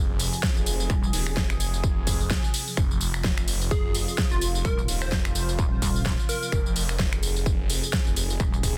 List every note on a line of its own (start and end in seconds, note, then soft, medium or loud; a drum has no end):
0.00 8.77 C3 medium
0.00 8.77 F3 medium
0.00 2.76 G#4 medium
0.09 0.18 F#1 loud
0.19 0.31 F1 medium
0.19 open hi-hat loud
0.19 tambourine medium
0.33 tambourine soft
0.43 kick loud
0.43 snare loud
0.43 tambourine soft
0.56 0.88 F1 loud
0.56 tambourine soft
0.66 open hi-hat loud
0.66 tambourine medium
0.80 tambourine soft
0.90 1.12 D#1 loud
0.90 finger snap medium
0.90 kick loud
0.90 tambourine soft
1.03 tambourine soft
1.13 1.35 D#1 loud
1.13 open hi-hat loud
1.13 tambourine medium
1.27 finger snap medium
1.27 tambourine soft
1.37 1.82 F1 medium
1.37 kick loud
1.37 snare loud
1.37 tambourine soft
1.50 finger snap medium
1.50 tambourine soft
1.60 open hi-hat loud
1.60 tambourine medium
1.74 tambourine soft
1.84 1.95 F1 loud
1.84 kick loud
1.84 tambourine soft
1.97 2.05 F1 loud
2.07 2.29 F1 loud
2.07 kick medium
2.07 open hi-hat loud
2.07 tambourine medium
2.21 tambourine soft
2.30 kick loud
2.30 snare loud
2.30 tambourine soft
2.44 tambourine soft
2.54 open hi-hat loud
2.54 tambourine medium
2.68 tambourine soft
2.77 3.12 F1 loud
2.77 6.51 F4 medium
2.77 finger snap medium
2.77 kick loud
2.77 tambourine soft
2.91 tambourine soft
3.01 open hi-hat loud
3.01 tambourine medium
3.14 3.46 F1 loud
3.14 finger snap medium
3.14 tambourine soft
3.24 kick loud
3.24 snare loud
3.24 tambourine soft
3.38 finger snap medium
3.38 tambourine soft
3.48 3.82 F1 loud
3.48 open hi-hat loud
3.48 tambourine medium
3.61 tambourine soft
3.71 4.29 G#4 loud
3.71 kick loud
3.71 tambourine soft
3.85 3.93 F#1 loud
3.95 4.06 F1 loud
3.95 open hi-hat loud
3.95 tambourine medium
4.08 tambourine soft
4.18 kick loud
4.18 snare loud
4.18 tambourine soft
4.31 4.63 F1 loud
4.31 4.45 F4 medium
4.31 tambourine soft
4.41 open hi-hat loud
4.41 tambourine medium
4.55 tambourine soft
4.65 4.87 D#1 loud
4.65 4.81 A#4 loud
4.65 finger snap medium
4.65 kick loud
4.65 tambourine soft
4.79 tambourine soft
4.88 5.10 D#1 loud
4.88 open hi-hat loud
4.88 tambourine medium
5.02 5.15 C5 medium
5.02 finger snap medium
5.02 tambourine soft
5.12 5.57 F1 loud
5.12 kick loud
5.12 snare loud
5.12 tambourine soft
5.25 finger snap medium
5.25 tambourine soft
5.35 open hi-hat loud
5.35 tambourine medium
5.49 tambourine soft
5.59 5.80 D#1 loud
5.59 kick loud
5.59 tambourine soft
5.82 6.17 D#1 loud
5.82 kick medium
5.82 open hi-hat loud
5.82 tambourine medium
5.96 tambourine soft
6.06 kick loud
6.06 snare loud
6.06 tambourine soft
6.19 tambourine soft
6.29 6.95 A#4 medium
6.29 open hi-hat loud
6.29 tambourine medium
6.43 tambourine soft
6.52 6.87 F1 loud
6.52 8.77 G#4 medium
6.52 finger snap medium
6.52 kick loud
6.52 tambourine soft
6.66 tambourine soft
6.76 open hi-hat loud
6.76 tambourine medium
6.89 7.21 F1 loud
6.89 finger snap medium
6.89 tambourine soft
6.99 kick loud
6.99 snare loud
6.99 tambourine soft
7.13 finger snap medium
7.13 tambourine soft
7.23 7.57 F1 loud
7.23 open hi-hat loud
7.23 tambourine medium
7.36 tambourine soft
7.46 kick loud
7.46 tambourine soft
7.60 7.68 F#1 loud
7.70 7.81 F1 loud
7.70 open hi-hat loud
7.70 tambourine medium
7.83 tambourine soft
7.93 kick loud
7.93 snare loud
7.93 tambourine soft
8.06 8.38 F1 loud
8.06 tambourine soft
8.16 open hi-hat loud
8.16 tambourine medium
8.30 tambourine soft
8.40 8.62 D#1 loud
8.40 finger snap medium
8.40 kick loud
8.40 tambourine soft
8.54 tambourine soft
8.63 8.77 D#1 loud
8.63 kick medium
8.63 open hi-hat loud
8.63 tambourine medium